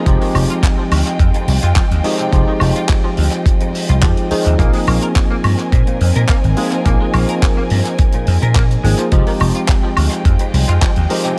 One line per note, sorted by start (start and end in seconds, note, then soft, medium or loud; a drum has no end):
0.00 4.55 G#3 medium
0.00 9.08 D#5 medium
0.05 0.15 F1 loud
0.05 2.01 F3 loud
0.05 0.18 F3 medium
0.05 2.01 G#3 medium
0.05 2.01 C4 medium
0.05 2.01 D#4 medium
0.05 4.55 F4 medium
0.05 2.02 G4 loud
0.05 4.55 G5 medium
0.05 kick loud
0.05 closed hi-hat medium
0.21 0.25 D#3 loud
0.21 open hi-hat medium
0.35 0.44 F1 loud
0.35 0.46 F3 medium
0.35 open hi-hat loud
0.35 high woodblock medium
0.50 0.54 F4 medium
0.50 closed hi-hat medium
0.63 kick loud
0.63 clap loud
0.63 closed hi-hat medium
0.78 0.82 F3 medium
0.91 1.00 D2 medium
0.91 open hi-hat loud
0.91 high woodblock medium
1.07 closed hi-hat medium
1.19 1.28 F2 loud
1.19 kick loud
1.19 closed hi-hat medium
1.34 1.45 F2 medium
1.34 closed hi-hat medium
1.48 1.57 C2 medium
1.48 open hi-hat loud
1.63 1.71 F2 medium
1.63 1.67 F4 medium
1.63 closed hi-hat medium
1.76 1.84 F3 medium
1.76 kick loud
1.76 clap loud
1.76 closed hi-hat medium
1.91 1.99 D#2 medium
1.91 closed hi-hat medium
2.04 2.16 D#3 medium
2.04 2.29 F3 medium
2.04 2.29 G#3 medium
2.04 2.29 C4 medium
2.04 2.29 D#4 medium
2.04 2.30 G4 loud
2.04 open hi-hat loud
2.19 2.26 C3 medium
2.19 closed hi-hat medium
2.31 2.42 F1 medium
2.31 3.99 F3 loud
2.31 2.44 F3 medium
2.31 3.99 G#3 medium
2.31 4.00 C4 medium
2.31 4.00 D#4 medium
2.31 4.00 G4 loud
2.31 kick loud
2.31 closed hi-hat medium
2.48 2.52 D#3 loud
2.60 2.70 F1 loud
2.60 2.72 F3 medium
2.60 open hi-hat loud
2.60 high woodblock medium
2.76 2.80 F4 medium
2.76 closed hi-hat medium
2.89 kick loud
2.89 clap loud
2.89 closed hi-hat medium
3.04 3.08 F3 medium
3.17 3.27 D2 medium
3.17 open hi-hat loud
3.32 closed hi-hat medium
3.46 kick loud
3.46 closed hi-hat medium
3.61 3.71 F2 medium
3.61 closed hi-hat medium
3.75 open hi-hat loud
3.89 4.04 C2 loud
3.89 3.93 F4 medium
3.89 closed hi-hat medium
4.02 4.12 F2 medium
4.02 4.27 F3 medium
4.02 4.10 F3 medium
4.02 4.27 G#3 medium
4.02 4.28 C4 medium
4.02 4.28 D#4 medium
4.02 4.28 G4 medium
4.02 kick loud
4.02 clap loud
4.02 closed hi-hat medium
4.17 closed hi-hat medium
4.30 4.42 D#3 medium
4.30 4.56 F3 medium
4.30 4.56 G#3 medium
4.30 4.56 C4 medium
4.30 4.56 D#4 medium
4.30 4.56 G#4 loud
4.30 muted slap bass stroke soft
4.30 open hi-hat loud
4.46 4.54 D#2 medium
4.46 4.53 C3 medium
4.46 closed hi-hat medium
4.58 4.68 A#1 loud
4.58 6.53 F3 medium
4.58 6.54 A#3 medium
4.58 4.70 A#3 medium
4.58 6.54 C4 medium
4.58 9.08 C4 medium
4.58 6.54 D#4 medium
4.58 6.54 G#4 loud
4.58 9.08 A#4 medium
4.58 9.08 G#5 medium
4.58 kick loud
4.58 closed hi-hat medium
4.73 4.78 G#3 loud
4.73 open hi-hat medium
4.87 4.96 A#1 loud
4.87 4.99 A#3 medium
4.87 open hi-hat loud
4.87 high woodblock medium
5.02 5.06 A#4 medium
5.02 closed hi-hat medium
5.16 kick loud
5.16 clap loud
5.16 closed hi-hat medium
5.31 5.35 A#3 medium
5.44 5.53 G2 medium
5.44 open hi-hat loud
5.44 high woodblock medium
5.59 closed hi-hat medium
5.72 5.81 A#2 loud
5.72 kick loud
5.72 closed hi-hat medium
5.87 5.97 A#2 medium
5.87 closed hi-hat soft
6.01 6.10 F2 medium
6.01 open hi-hat loud
6.16 6.24 A#2 medium
6.16 6.20 A#4 medium
6.16 closed hi-hat medium
6.29 6.37 A#3 medium
6.29 kick loud
6.29 clap loud
6.29 closed hi-hat medium
6.44 6.52 G#1 medium
6.44 closed hi-hat soft
6.57 6.82 F3 medium
6.57 6.68 G#3 medium
6.57 6.82 A#3 medium
6.57 6.82 C4 medium
6.57 6.82 D#4 medium
6.57 6.83 G#4 loud
6.57 open hi-hat loud
6.72 6.79 F3 medium
6.72 closed hi-hat medium
6.84 6.95 A#1 loud
6.84 8.80 F3 loud
6.84 8.80 A#3 medium
6.84 6.97 A#3 medium
6.84 8.80 C4 medium
6.84 8.81 D#4 medium
6.84 8.81 G#4 loud
6.84 kick loud
6.84 closed hi-hat medium
7.00 7.04 G#3 loud
7.14 7.23 A#1 loud
7.14 7.25 A#3 medium
7.14 open hi-hat loud
7.14 high woodblock medium
7.29 7.33 A#4 medium
7.29 closed hi-hat medium
7.42 kick loud
7.42 clap loud
7.42 closed hi-hat medium
7.57 7.61 A#3 medium
7.70 7.80 G2 medium
7.70 open hi-hat loud
7.85 closed hi-hat medium
7.99 kick loud
7.99 closed hi-hat medium
8.13 8.24 A#2 medium
8.13 closed hi-hat medium
8.27 8.36 F2 loud
8.27 open hi-hat loud
8.42 8.75 A#2 medium
8.42 8.46 A#4 medium
8.42 closed hi-hat medium
8.55 8.63 A#3 medium
8.55 kick loud
8.55 clap loud
8.55 closed hi-hat medium
8.71 closed hi-hat medium
8.83 8.93 G#1 medium
8.83 9.09 F3 medium
8.83 8.95 G#3 medium
8.83 9.09 A#3 medium
8.83 9.09 C4 medium
8.83 9.09 D#4 medium
8.83 9.09 G#4 loud
8.83 open hi-hat loud
8.98 9.05 F3 medium
8.98 closed hi-hat medium
9.11 9.21 F1 medium
9.11 11.07 F3 loud
9.11 9.23 F3 medium
9.11 11.07 G#3 medium
9.11 11.39 G#3 medium
9.11 11.07 C4 medium
9.11 11.07 D#4 medium
9.11 11.39 F4 medium
9.11 11.07 G4 loud
9.11 11.39 D#5 medium
9.11 11.39 G5 medium
9.11 kick loud
9.11 closed hi-hat medium
9.27 9.31 D#3 loud
9.27 open hi-hat medium
9.40 9.49 F1 loud
9.40 9.52 F3 medium
9.40 open hi-hat loud
9.40 high woodblock medium
9.55 9.59 F4 medium
9.55 closed hi-hat medium
9.68 kick loud
9.68 clap loud
9.68 closed hi-hat medium
9.84 9.88 F3 medium
9.97 10.06 D2 medium
9.97 open hi-hat loud
9.97 high woodblock medium
10.12 closed hi-hat medium
10.25 10.34 F2 loud
10.25 kick loud
10.25 closed hi-hat medium
10.39 10.50 F2 medium
10.39 closed hi-hat medium
10.53 10.62 C2 medium
10.53 open hi-hat loud
10.68 10.76 F2 medium
10.68 10.72 F4 medium
10.68 closed hi-hat medium
10.81 10.89 F3 medium
10.81 kick loud
10.81 clap loud
10.81 closed hi-hat medium
10.96 11.05 D#2 loud
10.96 closed hi-hat soft
11.10 11.21 D#3 medium
11.10 11.35 F3 medium
11.10 11.35 G#3 medium
11.10 11.35 C4 medium
11.10 11.35 D#4 medium
11.10 11.35 G4 loud
11.10 open hi-hat loud
11.24 11.31 C3 medium
11.24 closed hi-hat medium